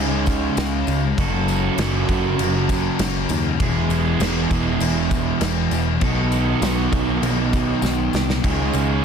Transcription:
Already playing: C#2 C#3 G#3 C#4 D#4 G#4
0.26 G#3 C#4, kick, tambourine, crash
0.56 C#2 C#3 G#3 C#4, snare, tambourine, crash
0.87 C#2, tambourine, crash
1.17 F#1 F#2 C#3 F#3 C#4 F#4 A4, kick, crash
1.48 tambourine, crash
1.77 F#1 F#2 C#3 F#3, snare, tambourine, crash
2.08 F#1 C#3 F#3, kick, tambourine, crash
2.38 F#1, tambourine, crash
2.68 C#3 F#3, kick, tambourine, crash
2.99 F#1 F#2 C#3 F#3, snare, tambourine, crash
3.29 D#2, tambourine, crash
3.58 E1 E2 B2 E3 G#3 B3 E4 G#4, kick, crash
3.89 E1, tambourine, crash
4.19 E1 E2 B2 E3, snare, tambourine, crash
4.49 E1 B2 E3, kick, tambourine, crash
4.80 E1, tambourine, crash
5.10 B2 E3, kick, tambourine, crash
5.40 E1 E2 B2 E3, snare, tambourine, crash
5.71 E1, tambourine, crash
6.00 B1 B2 D#3 F#3 B3 D#4 A4, kick, tambourine, crash
6.32 tambourine, crash
6.61 B1 B2 F#3 B3, snare, tambourine, crash
6.91 B1 F#3 B3, kick, tambourine, crash
7.22 B1, tambourine, crash
7.51 F#3 B3, kick, tambourine, crash
7.82 B1 B2 F#3 B3, snare, tambourine
8.13 C2, snare, tambourine
8.30 snare
8.43 C#2 C#3 G#3 C#4 D#4 G#4, kick, crash
8.73 C#2, tambourine, crash

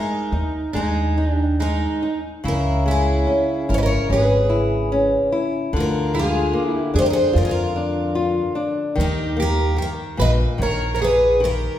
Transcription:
Already playing: G#3 D#4 A#4
0.32 D#2 D#4
0.73 D#2 G#3 D#4 G#4
1.18 D#4
1.29 D4 G4
1.60 G#3 D#4 A#4
2.02 D#4
2.44 C#2 C#3 E4
2.48 A#4
2.86 G#3 E4
2.91 G#4
3.27 C#4
3.69 G#1 E4 A#4
3.74 C#5 D#5
3.78 B4
3.83 A#4 C#5
4.10 G#1 C#4 G#4 B4
4.50 E4
4.92 C#4
5.32 E4
5.73 D2 D3 F4
5.80 A#4
6.14 G#3 F4
6.19 G#4
6.53 A#3
6.67 E4
6.74 G4
6.94 F2 D4 G#4
6.99 G4 C5
7.06 A#4
7.10 G#4 C5
7.33 F2 F4
7.38 A#4
7.43 F4 G#4
7.49 F4 A#4
7.76 D4
8.15 F4
8.55 D4
8.95 D#2 D#3
9.00 D#4 G4
9.37 A#3 G4
9.42 A#4
9.77 D#3 G4
9.82 A#4
10.17 A#1 A#2 B4
10.21 D#5
10.58 A#1 D#3 C#5
10.63 A#4
10.95 A#4 C#5
10.99 A#2 G#4
11.04 B4
11.40 D#3 G4
11.45 A#4

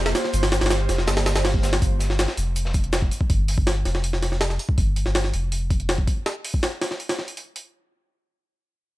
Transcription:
Already playing: F1 A#3 F4 G4 C5
0.06 snare, open hi-hat
0.15 snare, open hi-hat, shaker
0.24 snare
0.33 G1, open hi-hat, shaker
0.43 snare, open hi-hat
0.52 snare, open hi-hat, shaker
0.61 G1, snare, open hi-hat
0.66 snare, open hi-hat
0.70 snare, open hi-hat, shaker
0.89 F1, snare, open hi-hat, shaker
0.98 snare
1.07 G1, snare, open hi-hat, shaker
1.17 snare, open hi-hat
1.26 snare, open hi-hat, shaker
1.35 snare, open hi-hat, shaker
1.45 snare, open hi-hat
1.54 kick
1.63 snare, open hi-hat, shaker
1.73 snare, closed hi-hat, open hi-hat
1.82 G1, kick, open hi-hat, shaker
1.99 snare, open hi-hat, shaker
2.09 snare
2.19 snare, open hi-hat, shaker
2.28 snare
2.37 F1, open hi-hat, shaker
2.56 open hi-hat, shaker
2.65 snare
2.74 kick, open hi-hat, shaker
2.84 closed hi-hat
2.93 snare, open hi-hat, shaker
3.02 kick
3.11 open hi-hat, shaker
3.21 kick
3.30 G1, kick, open hi-hat
3.48 open hi-hat
3.58 G1, kick
3.67 snare, open hi-hat
3.85 F1, snare, open hi-hat
3.95 snare
4.04 open hi-hat
4.13 snare
4.23 snare, open hi-hat
4.32 snare
4.41 snare, open hi-hat
4.50 snare
4.59 open hi-hat
4.69 kick
4.78 G1, kick, open hi-hat
4.96 open hi-hat
5.06 G1, snare
5.15 snare, open hi-hat
5.24 snare
5.34 F1, open hi-hat
5.52 open hi-hat
5.70 kick, open hi-hat
5.80 closed hi-hat
5.89 snare, open hi-hat
5.98 kick
6.07 kick, open hi-hat
6.26 snare, open hi-hat
6.44 open hi-hat
6.54 kick
6.63 snare, open hi-hat
6.81 snare, open hi-hat
6.91 snare
7.00 open hi-hat
7.09 snare, open hi-hat
7.19 snare
7.28 open hi-hat
7.37 open hi-hat
7.56 open hi-hat

